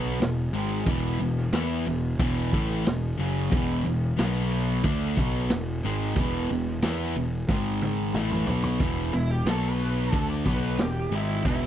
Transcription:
0.00 0.18 B1 medium
0.00 0.19 B2 medium
0.00 0.19 F#3 loud
0.00 0.19 B3 loud
0.20 0.51 E1 medium
0.20 0.47 E2 medium
0.20 0.47 B2 medium
0.20 snare loud
0.20 ride medium
0.53 0.84 G#1 medium
0.53 0.86 G#2 medium
0.53 0.86 D#3 medium
0.53 0.86 G#3 medium
0.53 ride medium
0.86 1.17 E1 medium
0.86 1.19 E2 medium
0.86 1.19 B2 medium
0.86 1.19 E3 loud
0.86 kick loud
0.86 ride medium
1.19 1.51 E1 medium
1.19 1.46 E2 medium
1.19 1.46 B2 medium
1.19 ride medium
1.37 snare soft
1.53 1.84 E2 medium
1.53 1.85 E3 medium
1.53 1.85 B3 medium
1.53 1.85 E4 loud
1.53 snare loud
1.53 ride medium
1.87 2.17 E1 medium
1.87 2.13 E2 medium
1.87 2.13 B2 medium
1.87 ride medium
2.19 2.50 E1 medium
2.19 2.52 E2 medium
2.19 2.52 B2 medium
2.19 2.52 E3 medium
2.19 kick loud
2.19 ride medium
2.52 2.83 A1 medium
2.52 2.85 A2 medium
2.52 2.85 E3 loud
2.52 2.85 A3 loud
2.52 kick medium
2.52 ride medium
2.85 3.17 E1 medium
2.85 3.12 E2 medium
2.85 3.12 B2 medium
2.85 snare loud
2.85 ride medium
3.17 3.50 F#1 medium
3.17 3.50 F#2 medium
3.17 3.51 C#3 loud
3.17 3.51 F#3 loud
3.17 ride medium
3.51 3.83 E1 medium
3.51 3.82 E2 medium
3.51 3.83 B2 loud
3.51 3.84 E3 loud
3.51 kick loud
3.51 ride medium
3.51 tambourine medium
3.84 4.16 E1 medium
3.84 4.11 E2 medium
3.84 4.11 B2 medium
3.84 ride medium
3.84 tambourine medium
4.17 4.81 B1 medium
4.17 4.83 B2 medium
4.17 4.83 F#3 medium
4.17 4.83 B3 loud
4.17 snare loud
4.17 ride loud
4.17 tambourine medium
4.51 ride medium
4.51 tambourine medium
4.83 5.15 D2 medium
4.83 5.16 D3 medium
4.83 5.16 A3 loud
4.83 5.16 D4 loud
4.83 kick loud
4.83 ride loud
5.16 5.48 B1 medium
5.16 5.49 B2 medium
5.16 5.50 F#3 medium
5.16 5.50 B3 medium
5.16 kick medium
5.16 ride medium
5.50 5.82 E1 medium
5.50 5.77 E2 medium
5.50 5.78 B2 medium
5.50 snare loud
5.50 ride medium
5.50 tambourine loud
5.83 6.15 G#1 medium
5.83 6.16 G#2 medium
5.83 6.16 D#3 medium
5.83 6.16 G#3 medium
5.83 ride medium
5.83 tambourine medium
6.16 6.47 E1 medium
6.16 6.49 E2 medium
6.16 6.50 B2 medium
6.16 6.50 E3 loud
6.16 kick loud
6.16 ride medium
6.16 tambourine medium
6.49 6.81 E1 medium
6.49 6.77 E2 medium
6.49 6.77 B2 medium
6.49 ride medium
6.49 tambourine medium
6.66 snare soft
6.82 7.14 E2 medium
6.82 7.15 E3 medium
6.82 7.15 B3 medium
6.82 7.15 E4 loud
6.82 snare loud
6.82 ride medium
6.82 tambourine medium
7.15 7.47 E1 medium
7.15 7.43 E2 medium
7.15 7.43 B2 medium
7.15 ride medium
7.15 tambourine medium
7.48 8.11 G#1 medium
7.48 8.14 G#2 medium
7.48 8.14 D#3 medium
7.48 8.15 G#3 medium
7.48 kick loud
7.48 snare medium
7.48 tambourine soft
7.81 high tom medium
7.81 tambourine soft
8.13 8.46 A1 medium
8.13 8.46 A2 medium
8.13 8.47 E3 medium
8.13 8.48 A3 medium
8.13 mid tom medium
8.13 tambourine medium
8.31 mid tom medium
8.46 8.78 B1 medium
8.46 8.80 B2 medium
8.46 8.80 F#3 medium
8.46 8.80 B3 medium
8.46 floor tom medium
8.46 tambourine medium
8.63 floor tom medium
8.80 9.11 E1 medium
8.80 9.12 E2 medium
8.80 9.13 B2 medium
8.80 9.14 E3 medium
8.80 kick loud
8.80 ride medium
9.13 9.45 E1 medium
9.13 9.40 E2 medium
9.13 9.41 B2 medium
9.13 9.30 E4 medium
9.13 ride medium
9.31 9.47 G4 medium
9.46 10.09 B1 medium
9.46 10.12 B2 medium
9.46 10.12 F#3 medium
9.46 10.12 B3 medium
9.46 9.64 A4 medium
9.46 snare loud
9.46 ride medium
9.65 10.11 B4 medium
9.79 ride medium
10.11 10.44 D2 medium
10.11 10.45 D3 medium
10.11 10.45 A3 medium
10.11 10.45 D4 medium
10.11 10.29 A4 medium
10.11 kick loud
10.11 ride medium
10.31 10.47 D5 medium
10.45 10.77 B1 medium
10.45 10.78 B2 medium
10.45 10.78 F#3 medium
10.45 10.79 B3 medium
10.45 10.79 B4 medium
10.45 kick medium
10.45 ride medium
10.78 11.10 E1 medium
10.78 11.06 E2 medium
10.78 11.06 B2 medium
10.78 11.13 G4 medium
10.78 snare loud
10.78 ride medium
11.11 11.42 G#1 medium
11.11 11.44 G#2 medium
11.11 11.44 D#3 medium
11.11 11.44 G#3 medium
11.11 ride medium
11.15 11.46 E4 medium
11.44 11.67 E1 medium
11.44 11.67 E2 medium
11.44 11.67 B2 medium
11.44 11.67 E3 loud
11.44 11.67 E4 medium
11.44 kick loud
11.44 ride medium

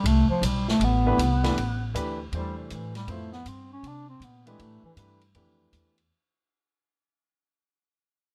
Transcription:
0.04 0.27 C2 medium
0.04 0.29 A3 medium
0.04 ride medium
0.29 0.47 F3 medium
0.29 muted upright bass stroke soft
0.41 0.79 B1 medium
0.41 hi-hat pedal soft
0.41 ride medium
0.46 0.68 G3 medium
0.68 0.86 A3 medium
0.68 snare soft
0.80 1.17 A1 medium
0.80 ride medium
0.84 1.96 B3 medium
1.06 1.18 E3 medium
1.06 1.18 A3 medium
1.06 1.18 D4 medium
1.06 1.18 G4 medium
1.06 1.18 B4 medium
1.18 1.55 C2 medium
1.18 hi-hat pedal soft
1.18 ride medium
1.43 1.55 E3 medium
1.43 1.55 A3 medium
1.43 1.55 D4 medium
1.43 1.55 G4 medium
1.43 1.56 B4 medium
1.43 snare soft
1.43 ride soft
1.56 1.93 A1 medium
1.56 ride medium
1.94 2.31 D2 medium
1.94 2.16 E3 medium
1.94 2.16 A3 medium
1.94 2.17 D4 medium
1.94 2.17 G4 medium
1.94 2.17 B4 medium
1.94 hi-hat pedal medium
1.94 ride medium
2.32 2.69 E2 medium
2.32 2.90 E3 medium
2.32 2.56 G3 medium
2.32 2.90 A3 medium
2.32 2.91 D4 medium
2.32 2.90 G4 soft
2.32 2.91 C5 medium
2.32 ride medium
2.58 2.74 C3 soft
2.70 3.07 A2 medium
2.70 2.95 E3 medium
2.70 hi-hat pedal soft
2.70 ride soft
2.95 3.12 G3 medium
2.95 snare soft
2.95 ride soft
3.07 3.44 F2 medium
3.07 3.30 F3 medium
3.07 3.32 A3 medium
3.07 3.30 B3 medium
3.07 3.30 E4 medium
3.07 3.31 A4 medium
3.07 3.31 C5 medium
3.07 ride medium
3.32 3.50 B3 medium
3.32 snare soft
3.45 3.82 G2 medium
3.45 3.72 C4 medium
3.45 hi-hat pedal medium
3.45 ride medium
3.73 3.89 C#4 loud
3.83 4.19 C3 medium
3.83 ride medium
3.87 4.08 D4 loud
4.09 4.26 C4 medium
4.20 4.57 A#2 medium
4.20 hi-hat pedal soft
4.20 ride medium
4.24 4.47 B3 medium
4.46 4.94 E3 medium
4.46 4.63 G#3 medium
4.46 4.95 A3 medium
4.46 4.95 D4 medium
4.46 4.94 G4 medium
4.46 4.95 B4 medium
4.46 ride soft
4.59 4.82 A2 medium
4.59 4.84 A3 medium
4.59 ride medium
4.83 4.92 E3 medium
4.83 muted upright bass stroke soft
4.96 5.33 G2 medium
4.96 5.19 E3 medium
4.96 5.19 A3 medium
4.96 5.19 D4 medium
4.96 5.19 G4 medium
4.96 5.20 B4 medium
4.96 hi-hat pedal medium
4.96 ride medium
5.21 ride soft
5.35 5.71 F2 medium
5.35 5.92 E3 medium
5.35 5.92 A3 soft
5.35 5.92 D4 soft
5.35 5.92 G4 soft
5.35 5.93 B4 medium
5.35 ride medium
5.72 6.09 E2 medium
5.72 hi-hat pedal soft
5.72 ride medium
5.98 ride soft

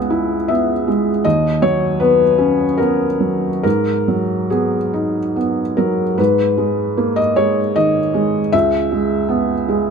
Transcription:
0.00 1.20 C#2 soft
0.00 0.88 G#3 soft
0.00 0.35 B3 soft
0.00 0.49 F#5 medium
0.10 0.71 E4 soft
0.48 1.09 B3 soft
0.48 0.86 E5 medium
0.88 1.25 G#3 soft
1.25 3.61 D#2 soft
1.25 1.62 D#5 medium
1.62 2.23 F#3 soft
1.62 2.00 C#5 medium
2.00 2.63 B3 soft
2.00 2.79 B4 medium
2.38 3.04 C#4 soft
2.78 3.47 B3 soft
2.78 3.62 A#4 medium
3.20 3.64 F#3 soft
3.63 6.14 G#2 soft
3.63 4.49 A#4 medium
4.08 4.75 F#3 soft
4.50 5.18 B3 soft
4.50 5.35 G#4 soft
4.94 5.61 D#4 soft
5.36 6.03 B3 soft
5.77 6.19 F#3 soft
5.77 6.18 A#4 medium
6.18 8.49 G#2 soft
6.18 7.16 B4 medium
6.58 7.20 G#3 soft
6.98 7.60 A#3 soft
7.16 7.36 D#5 medium
7.36 7.99 G#3 soft
7.36 7.75 C#5 medium
7.76 8.38 D#3 soft
7.76 8.53 D#5 medium
8.14 8.53 G#3 soft
8.52 9.90 C#2 soft
8.52 9.90 E5 medium
8.92 9.53 G#3 soft
9.29 9.90 B3 soft
9.69 9.90 G#3 soft

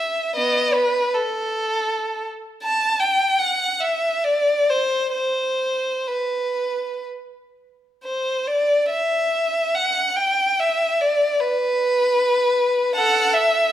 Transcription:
0.00 0.35 E5 soft
0.35 0.73 B3 soft
0.35 0.75 D#5 medium
0.74 1.15 B4 medium
1.14 2.28 A4 soft
2.64 2.97 A5 medium
3.00 3.39 G5 medium
3.39 3.81 F#5 medium
3.81 4.24 E5 soft
4.24 4.68 D5 medium
4.70 5.13 C5 soft
5.14 6.07 C5 soft
6.08 7.05 B4 soft
8.04 8.45 C5 soft
8.48 8.91 D5 medium
8.90 9.73 E5 medium
9.75 10.17 F#5 medium
10.17 10.60 G5 medium
10.60 11.01 E5 medium
11.01 11.41 D5 medium
11.40 12.97 B4 medium
12.95 13.31 A4 medium
12.95 13.33 F#5 medium
13.33 13.72 E5 medium

